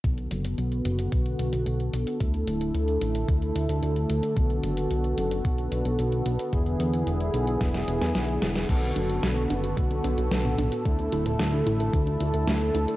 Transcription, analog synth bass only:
X:1
M:4/4
L:1/16
Q:1/4=111
K:Bdor
V:1 name="Analog synth bass" clef=bass
B,,,2 F,,,2 B,,,2 F,,,2 B,,,2 B,,, B,,, B,,,2 B,,, z | D,,2 D,,,2 D,,2 A,,,2 D,,2 D,, D,, D,,2 D,, z | B,,,2 F,,,2 B,,,2 F,,,2 B,,,2 B,,, B,,, B,,,2 B,,, z | E,,,2 E,,2 E,,,2 B,,,2 E,,,2 E,,, E,, B,,,2 E,,,2 |
B,,,2 F,,,2 B,,,2 F,,,2 B,,,2 B,,, B,,, B,,,2 B,,, z | D,,2 D,,,2 D,,2 A,,,2 D,,2 D,, D,, D,,2 D,, z |]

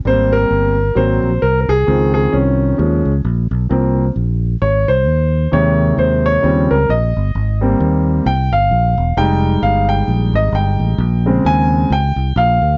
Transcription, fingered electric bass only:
X:1
M:4/4
L:1/8
Q:"Swing" 1/4=132
K:Ab
V:1 name="Fingered electric bass" clef=bass
A,,,2 G,,,2 A,,, B,,, C,, C,, | D,,2 C,,2 E,, D,, B,,, _C,, | C,,2 B,,,2 A,,, C,, E,,2 | E,,2 E,,2 E,, D,, B,,, G,,, |
A,,,2 E,,2 C,, G,,, B,,, _F,,, | F,,,2 G,,,2 B,,, A,,, G,,, =A,,, | B,,,2 E,,2 D,, C,, B,,, =D,, |]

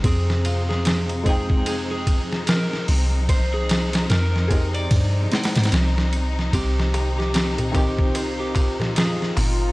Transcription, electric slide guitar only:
X:1
M:4/4
L:1/16
Q:"Swing 16ths" 1/4=74
K:Fdor
V:1 name="Electric slide guitar"
A3 A3 A3 A3 B2 z2 | z A3 B3 d8 z | G3 G3 G3 G3 A2 z2 |]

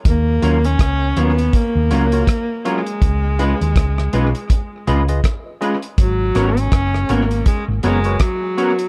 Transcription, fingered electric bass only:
X:1
M:4/4
L:1/16
Q:"Swing 16ths" 1/4=81
K:Ebm
V:1 name="Fingered electric bass" clef=bass
E,,2 E,,2 D,,2 E,,2 z E,, D,,2 z4 | D,,3 E,, D,,2 C,, z3 D,,2 z4 | A,,,2 A,,,2 G,,,2 A,,,2 z A,,, G,,,2 z4 |]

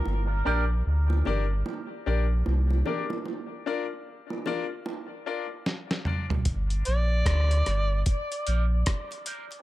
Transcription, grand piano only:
X:1
M:4/4
L:1/16
Q:"Swing 16ths" 1/4=75
K:Gm
V:1 name="Grand piano"
z2 [DGBd] z3 [DGBd] z3 [DGBd] z3 [DGBd] [Bd] | z2 [DFBd] z3 [DFBd] z3 [DFBd] z3 [DFBd] [Bd] | z16 |]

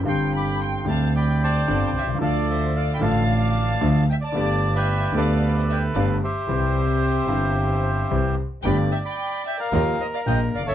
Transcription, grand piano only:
X:1
M:4/4
L:1/16
Q:1/4=112
K:Gmix
V:1 name="Grand piano" clef=bass
[G,,,G,,D,G,CG]6 [D,,D,G,CG]6 [G,,,G,,D,G,CG]2 z/2 B,,,/2 C,,/2 _D,,/2 | [D,,D,F,A,F]6 [A,,,A,,D,F,A,F]6 [D,,D,F,A,F]2 z2 | [G,,,G,,D,A,B,G]6 [D,,D,A,B,G]6 [G,,,G,,D,A,B,G]2 z2 | [C,,C,E,G,CG]6 [G,,,G,,E,G,CG]6 [C,,C,E,G,CG]2 z2 |
[G,,,G,,D,A,B,G]2 z6 [_E,,_E,F,_B,_EG]2 z2 [_B,,,_B,,]2 z/2 ^F,,,/2 G,,,/2 z/2 |]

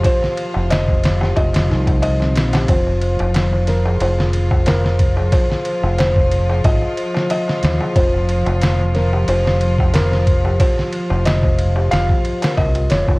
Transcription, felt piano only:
X:1
M:4/4
L:1/8
Q:"Swing 16ths" 1/4=91
K:Cphr
V:1 name="Felt piano"
c2 e2 e2 e2 | c2 z B c2 B2 | c2 c2 e2 e2 | c2 z B c2 B2 |
c2 e2 f2 e d |]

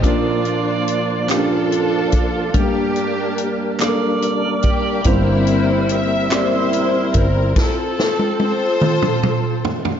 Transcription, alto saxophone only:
X:1
M:6/8
L:1/8
Q:3/8=48
K:Bb
V:1 name="Alto saxophone"
d3 F3 | G2 z d3 | c2 =e3 c | A4- A z |]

